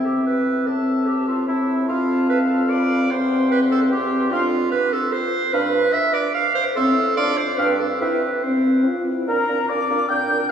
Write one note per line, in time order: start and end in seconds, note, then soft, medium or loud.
0.00 0.63 C3 medium
0.00 0.63 C4 medium
0.00 0.63 E5 medium
0.00 0.62 G5 medium
0.06 0.25 G4 medium
0.26 0.68 B4 medium
0.67 1.87 A2 medium
0.67 1.47 C4 medium
0.67 1.08 A4 medium
0.67 1.47 E5 medium
0.67 1.46 A5 medium
1.07 1.27 G4 medium
1.28 1.47 F4 medium
1.48 1.88 C4 medium
1.48 1.88 E4 medium
1.48 1.91 E5 medium
1.48 1.88 A5 medium
1.88 3.13 F2 medium
1.88 3.08 C4 medium
1.88 2.29 F4 medium
1.88 3.12 F5 medium
1.88 2.71 A5 medium
2.29 2.39 B4 loud
2.49 2.71 A4 medium
2.70 3.12 D5 loud
2.70 3.12 B5 medium
3.11 4.31 E2 medium
3.11 3.90 C4 medium
3.11 3.50 C5 medium
3.11 3.91 G5 medium
3.11 3.91 C6 medium
3.51 3.60 B4 loud
3.71 3.80 A4 loud
3.91 4.31 C4 medium
3.91 4.33 G4 loud
3.91 4.31 G5 medium
3.91 4.31 C6 medium
4.31 4.66 F2 medium
4.31 4.46 D4 medium
4.31 4.71 F4 loud
4.31 4.47 F5 medium
4.31 4.51 C6 medium
4.71 4.94 B4 loud
4.93 5.14 A4 loud
5.12 5.54 C5 loud
5.53 5.88 G2 medium
5.53 5.68 D4 medium
5.53 5.94 B4 loud
5.53 5.68 F5 medium
5.53 5.73 B5 medium
5.93 6.15 E5 loud
6.14 6.34 D5 loud
6.34 6.54 F5 loud
6.55 6.65 C5 loud
6.76 7.11 A2 loud
6.76 6.91 C4 medium
6.76 7.16 A4 loud
6.76 6.91 E5 medium
6.76 6.95 C6 medium
7.17 7.52 F2 medium
7.17 7.32 D4 medium
7.17 7.39 D5 loud
7.17 7.32 F5 medium
7.17 7.37 C6 medium
7.37 7.59 C5 loud
7.58 7.94 G2 medium
7.58 7.74 D4 medium
7.58 7.79 B4 loud
7.58 7.74 F5 medium
7.58 7.79 G5 medium
7.80 8.00 A4 medium
8.01 8.37 C3 medium
8.01 8.16 E4 medium
8.01 8.45 B4 medium
8.01 8.16 E5 medium
8.01 8.21 G5 medium
8.43 8.88 C4 medium
8.43 9.07 C5 medium
8.87 9.09 F4 medium
9.08 9.29 E4 medium
9.28 9.37 A#2 medium
9.28 9.38 D4 medium
9.28 9.37 A#4 medium
9.28 9.71 A#4 loud
9.28 9.66 A#5 loud
9.49 9.58 A#2 medium
9.49 9.58 D4 medium
9.49 9.58 A#4 medium
9.68 9.79 A#2 medium
9.68 9.79 D4 medium
9.68 9.78 A#4 medium
9.68 10.09 D5 medium
9.68 10.10 D6 loud
9.89 9.99 A#2 medium
9.89 10.00 D4 medium
9.89 9.99 A#4 medium
10.09 10.19 A#2 medium
10.09 10.19 D4 medium
10.09 10.18 A#4 medium
10.09 10.49 G5 loud
10.09 10.51 G6 loud
10.29 10.39 A#2 medium
10.29 10.39 D4 medium
10.29 10.38 A#4 medium